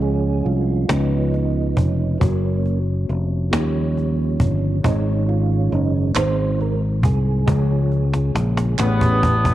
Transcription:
0.00 0.42 C#2 medium
0.00 0.85 F3 soft
0.00 0.86 F3 soft
0.00 0.63 G#3 medium
0.00 0.86 G#3 soft
0.00 0.64 C#4 medium
0.00 0.86 C#4 medium
0.00 0.64 F4 medium
0.00 0.47 G#4 medium
0.00 0.64 C#5 medium
0.00 cajon slap soft
0.45 0.86 C2 medium
0.45 0.91 F4 medium
0.45 cajon slap soft
0.88 1.73 C#2 medium
0.88 2.17 C#3 medium
0.88 2.17 F3 soft
0.88 1.95 G#3 medium
0.88 1.32 B3 soft
0.88 1.95 C#4 medium
0.88 1.35 C#4 medium
0.88 0.96 D#4 soft
0.88 2.17 D#4 medium
0.88 1.95 B4 medium
0.88 cajon slap loud
0.95 1.98 F4 medium
1.34 1.79 B3 medium
1.34 cajon slap soft
1.76 2.17 F1 medium
1.76 2.19 C#4 medium
1.76 cajon bass medium
2.19 3.05 F#1 medium
2.19 2.79 F#3 medium
2.19 2.79 A#3 soft
2.19 3.26 A#3 medium
2.19 2.79 C#4 medium
2.19 3.27 C#4 medium
2.19 3.27 F#4 medium
2.19 3.27 C#5 medium
2.19 cajon bass loud
2.66 cajon slap soft
3.09 3.49 F1 medium
3.09 cajon slap soft
3.50 4.36 D#2 medium
3.50 4.80 D#3 medium
3.50 4.79 F3 soft
3.50 4.80 G3 soft
3.50 4.58 A#3 medium
3.50 4.80 C#4 medium
3.50 4.58 D#4 medium
3.50 3.59 F4 medium
3.50 4.58 C#5 medium
3.50 cajon slap medium
3.59 4.62 G4 medium
3.97 cajon slap soft
4.40 4.81 G1 medium
4.40 cajon bass medium
4.84 5.68 G#1 loud
4.84 6.12 G#2 medium
4.84 6.12 D#3 medium
4.84 5.90 G#3 medium
4.84 6.12 G#3 soft
4.84 5.90 C#4 medium
4.84 6.12 C#4 medium
4.84 5.90 D#4 medium
4.84 5.30 D#4 medium
4.84 4.91 C5 medium
4.84 cajon bass medium
4.91 5.93 C#5 medium
5.28 5.73 F4 medium
5.28 cajon slap soft
5.72 6.13 F#1 medium
5.72 5.93 D#4 medium
5.72 cajon slap soft
6.15 7.03 G#1 loud
6.15 7.43 G#2 medium
6.15 6.74 D#3 medium
6.15 7.21 G#3 medium
6.15 6.75 G#3 soft
6.15 7.21 C4 medium
6.15 6.75 C4 medium
6.15 7.21 D#4 medium
6.15 6.22 B4 medium
6.15 6.51 C5 loud
6.15 cajon slap loud
6.15 clap medium
6.22 7.25 C5 medium
6.52 6.60 C5 medium
6.61 6.81 A#4 medium
6.61 cajon slap soft
7.03 7.44 C2 medium
7.03 9.19 G#4 medium
7.03 cajon bass medium
7.46 8.31 C#2 loud
7.46 8.75 C#3 medium
7.46 8.05 F3 medium
7.46 8.53 G#3 medium
7.46 8.05 G#3 soft
7.46 8.53 C#4 medium
7.46 8.05 C#4 medium
7.46 8.53 F4 medium
7.46 8.53 C#5 medium
7.46 cajon bass loud
7.46 cajon slap medium
7.92 cajon slap soft
8.14 cajon slap medium
8.35 8.75 A#1 medium
8.35 cajon slap medium
8.57 cajon slap medium
8.78 9.54 A1 loud
8.78 9.54 A2 medium
8.78 9.54 E3 medium
8.78 9.54 G3 medium
8.78 9.54 A3 medium
8.78 9.37 B3 medium
8.78 9.54 B3 medium
8.78 9.37 C#4 medium
8.78 9.54 E4 medium
8.78 9.37 G4 medium
8.78 9.54 G4 medium
8.78 9.54 C#5 medium
8.78 cajon slap medium
8.78 clap medium
9.01 cajon bass medium
9.23 9.54 A5 medium
9.23 cajon bass medium
9.45 cajon bass medium

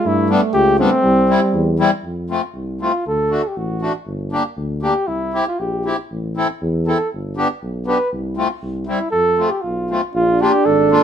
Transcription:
0.03 0.37 G2 medium
0.03 1.04 A3 medium
0.03 0.32 E4 medium
0.30 0.41 G3 medium
0.30 0.41 B3 medium
0.30 0.41 D4 medium
0.54 0.86 C#2 medium
0.54 0.78 G4 loud
0.79 0.90 G3 medium
0.79 0.90 B3 medium
0.79 1.76 C4 loud
0.79 0.90 D4 medium
1.03 1.36 C2 medium
1.03 1.79 G3 medium
1.29 1.40 G3 medium
1.29 1.40 C4 soft
1.29 1.41 E4 medium
1.53 1.86 E2 medium
1.79 1.91 G3 medium
1.79 1.91 C4 medium
1.79 1.91 E4 medium
2.04 2.37 F2 medium
2.30 2.41 A3 medium
2.30 2.42 C4 medium
2.30 2.42 F4 medium
2.54 2.88 C2 medium
2.81 2.92 A3 soft
2.81 2.92 C4 soft
2.81 2.92 F4 medium
2.81 3.04 F4 medium
3.07 3.39 D2 medium
3.07 3.49 A4 medium
3.31 3.42 A3 medium
3.31 3.42 D4 soft
3.31 3.42 F#4 medium
3.48 3.58 G4 soft
3.56 3.88 A1 medium
3.56 3.94 F#4 medium
3.82 3.93 A3 medium
3.82 3.93 D4 soft
3.82 3.93 F#4 medium
4.06 4.39 G1 medium
4.32 4.43 A#3 medium
4.32 4.43 D4 medium
4.32 4.43 G4 medium
4.56 4.89 D2 medium
4.82 4.94 A#3 medium
4.82 4.94 D4 soft
4.82 4.94 G4 medium
4.82 5.09 G4 medium
5.07 5.41 C2 medium
5.07 5.46 E4 medium
5.34 5.45 C4 soft
5.34 5.45 E4 soft
5.34 5.45 G4 medium
5.47 5.61 F4 medium
5.59 5.92 A#1 medium
5.59 5.98 G4 medium
5.85 5.96 C4 soft
5.85 5.97 E4 soft
5.85 5.97 G4 medium
6.11 6.43 A1 medium
6.37 6.47 C4 medium
6.37 6.48 E4 medium
6.37 6.48 A4 medium
6.62 6.94 E2 medium
6.87 6.98 C4 soft
6.87 6.98 E4 soft
6.87 7.09 A4 medium
6.87 6.98 A4 medium
7.13 7.45 G1 medium
7.37 7.48 B3 medium
7.37 7.48 D4 medium
7.37 7.48 G4 medium
7.62 7.94 B1 medium
7.86 7.97 B3 soft
7.86 7.98 D4 soft
7.86 7.98 G4 medium
7.86 8.10 B4 medium
8.12 8.45 C2 medium
8.37 8.48 A3 medium
8.37 8.48 C4 soft
8.37 8.48 F4 medium
8.62 8.95 C2 medium
8.87 8.99 G3 soft
8.87 8.99 C4 soft
8.87 9.10 E4 medium
8.87 8.99 E4 medium
9.11 9.46 F2 medium
9.11 9.52 A4 medium
9.38 9.50 A3 soft
9.38 9.50 C4 soft
9.38 9.50 F4 medium
9.50 9.63 G4 medium
9.61 9.97 B1 medium
9.61 10.01 F4 medium
9.90 10.01 A3 medium
9.90 10.01 C4 soft
9.90 10.01 F4 medium
10.13 10.47 A#1 medium
10.13 11.03 D4 loud
10.13 10.43 F4 medium
10.41 10.52 A#3 medium
10.41 10.52 D4 soft
10.41 10.52 F4 medium
10.41 10.67 G4 medium
10.65 10.98 G#1 medium
10.65 11.03 A4 medium
10.91 11.02 A#3 medium
10.91 11.02 D4 medium
10.91 11.02 F4 medium

